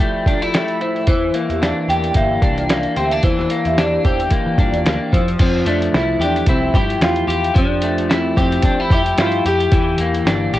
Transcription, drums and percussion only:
0.26 kick, closed hi-hat
0.42 closed hi-hat
0.54 snare, closed hi-hat
0.68 closed hi-hat
0.81 closed hi-hat
0.96 closed hi-hat
1.07 kick, closed hi-hat
1.34 closed hi-hat
1.50 closed hi-hat
1.63 snare, closed hi-hat
1.90 closed hi-hat
2.04 closed hi-hat
2.14 kick, closed hi-hat
2.42 kick, closed hi-hat
2.58 closed hi-hat
2.69 snare, closed hi-hat
2.83 closed hi-hat
2.96 closed hi-hat
3.11 closed hi-hat
3.23 kick, closed hi-hat
3.39 snare
3.50 closed hi-hat
3.65 closed hi-hat
3.78 snare, closed hi-hat
4.05 kick, closed hi-hat
4.20 closed hi-hat
4.30 kick, closed hi-hat
4.58 kick, closed hi-hat
4.74 closed hi-hat
4.86 snare, closed hi-hat
5.13 kick, closed hi-hat
5.28 closed hi-hat
5.39 kick, closed hi-hat, crash
5.66 closed hi-hat
5.82 closed hi-hat
5.94 snare, closed hi-hat
6.22 closed hi-hat
6.36 closed hi-hat
6.46 kick, closed hi-hat
6.74 kick, closed hi-hat
6.90 closed hi-hat
7.01 snare, closed hi-hat
7.16 closed hi-hat
7.30 closed hi-hat
7.44 closed hi-hat
7.56 kick, closed hi-hat
7.82 closed hi-hat
7.98 closed hi-hat
8.11 snare, closed hi-hat
8.37 kick, closed hi-hat
8.52 closed hi-hat
8.62 kick, closed hi-hat
8.90 kick, closed hi-hat
9.06 closed hi-hat
9.18 snare, closed hi-hat
9.32 closed hi-hat
9.46 closed hi-hat
9.60 closed hi-hat
9.72 kick, closed hi-hat
9.98 closed hi-hat
10.15 closed hi-hat
10.27 snare, closed hi-hat
10.54 closed hi-hat

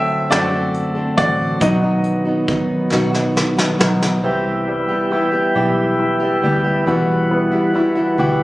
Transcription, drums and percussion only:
0.31 snare, closed hi-hat
0.74 closed hi-hat
1.18 kick, closed hi-hat
1.61 kick, closed hi-hat
2.04 closed hi-hat
2.48 kick, closed hi-hat
2.92 snare
3.14 snare
3.37 snare
3.58 snare
3.81 snare
4.02 snare

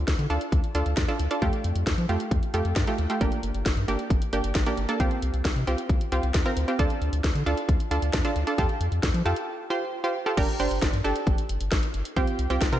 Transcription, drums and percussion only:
0.08 kick, snare, closed hi-hat
0.19 closed hi-hat
0.30 closed hi-hat
0.41 closed hi-hat
0.52 kick, closed hi-hat
0.64 closed hi-hat
0.75 closed hi-hat
0.86 closed hi-hat
0.97 kick, snare, closed hi-hat
1.08 closed hi-hat
1.19 closed hi-hat
1.31 closed hi-hat
1.42 kick, closed hi-hat
1.53 closed hi-hat
1.64 closed hi-hat
1.76 closed hi-hat
1.87 kick, snare, closed hi-hat
1.98 closed hi-hat
2.09 closed hi-hat
2.20 closed hi-hat
2.31 kick, closed hi-hat
2.43 closed hi-hat
2.54 closed hi-hat
2.65 closed hi-hat
2.76 kick, snare, closed hi-hat
2.87 closed hi-hat
2.98 closed hi-hat
3.10 closed hi-hat
3.21 kick, closed hi-hat
3.32 closed hi-hat
3.43 closed hi-hat
3.54 closed hi-hat
3.66 kick, snare, closed hi-hat
3.77 closed hi-hat
3.88 closed hi-hat
3.99 closed hi-hat
4.10 kick, closed hi-hat
4.22 closed hi-hat
4.33 closed hi-hat
4.44 closed hi-hat
4.55 kick, snare, closed hi-hat
4.66 closed hi-hat
4.77 closed hi-hat
4.89 closed hi-hat
5.00 kick, closed hi-hat
5.11 closed hi-hat
5.22 closed hi-hat
5.34 closed hi-hat
5.45 kick, snare, closed hi-hat
5.56 closed hi-hat
5.67 closed hi-hat
5.78 closed hi-hat
5.89 kick, closed hi-hat
6.01 closed hi-hat
6.12 closed hi-hat
6.23 closed hi-hat
6.34 kick, snare, closed hi-hat
6.46 closed hi-hat
6.57 closed hi-hat
6.68 closed hi-hat
6.79 kick, closed hi-hat
6.90 closed hi-hat
7.02 closed hi-hat
7.13 closed hi-hat
7.24 kick, snare, closed hi-hat
7.35 closed hi-hat
7.47 closed hi-hat
7.57 closed hi-hat
7.69 kick, closed hi-hat
7.80 closed hi-hat
7.91 closed hi-hat
8.02 closed hi-hat
8.13 kick, snare, closed hi-hat
8.25 closed hi-hat
8.36 closed hi-hat
8.47 closed hi-hat
8.58 kick, closed hi-hat
8.69 closed hi-hat
8.81 closed hi-hat
8.92 closed hi-hat
9.03 kick, snare, closed hi-hat
9.14 closed hi-hat
9.26 closed hi-hat
9.36 closed hi-hat
10.37 kick, closed hi-hat, crash
10.48 closed hi-hat
10.60 closed hi-hat
10.71 closed hi-hat
10.82 kick, snare, closed hi-hat
10.94 closed hi-hat
11.05 closed hi-hat
11.16 closed hi-hat
11.27 kick, closed hi-hat
11.38 closed hi-hat
11.49 closed hi-hat
11.61 closed hi-hat
11.72 kick, snare, closed hi-hat
11.83 closed hi-hat
11.94 closed hi-hat
12.05 closed hi-hat
12.16 kick, closed hi-hat
12.27 closed hi-hat
12.39 closed hi-hat
12.50 closed hi-hat
12.61 kick, snare, closed hi-hat
12.73 closed hi-hat

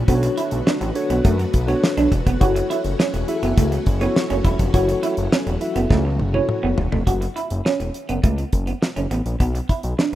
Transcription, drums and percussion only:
0.08 kick, closed hi-hat
0.23 closed hi-hat
0.37 closed hi-hat
0.51 closed hi-hat
0.67 snare
0.81 closed hi-hat
0.95 closed hi-hat
1.10 closed hi-hat
1.25 kick, closed hi-hat
1.39 closed hi-hat
1.54 kick, closed hi-hat
1.68 closed hi-hat
1.84 snare
1.97 closed hi-hat
2.12 kick, closed hi-hat
2.27 kick, closed hi-hat
2.41 kick, closed hi-hat
2.56 closed hi-hat
2.71 closed hi-hat
2.84 closed hi-hat
3.00 snare
3.14 closed hi-hat
3.28 closed hi-hat
3.43 closed hi-hat
3.58 kick, closed hi-hat
3.72 closed hi-hat
3.86 kick, closed hi-hat
4.01 closed hi-hat
4.16 snare
4.30 closed hi-hat
4.45 kick, closed hi-hat
4.59 kick, closed hi-hat
4.74 kick, closed hi-hat
4.89 closed hi-hat
5.03 closed hi-hat
5.17 closed hi-hat
5.32 snare
5.47 closed hi-hat
5.61 closed hi-hat
5.76 closed hi-hat
5.91 kick, snare
6.19 high tom
6.34 high tom
6.49 mid tom
6.78 floor tom
6.92 floor tom
7.07 kick, closed hi-hat
7.22 closed hi-hat
7.37 closed hi-hat
7.50 closed hi-hat
7.66 snare
7.80 closed hi-hat
7.94 closed hi-hat
8.09 closed hi-hat
8.24 kick, closed hi-hat
8.38 closed hi-hat
8.53 kick, closed hi-hat
8.67 closed hi-hat
8.82 snare
8.96 closed hi-hat
9.11 closed hi-hat
9.26 closed hi-hat
9.40 kick, closed hi-hat
9.55 closed hi-hat
9.69 kick, closed hi-hat
9.83 closed hi-hat
9.99 snare

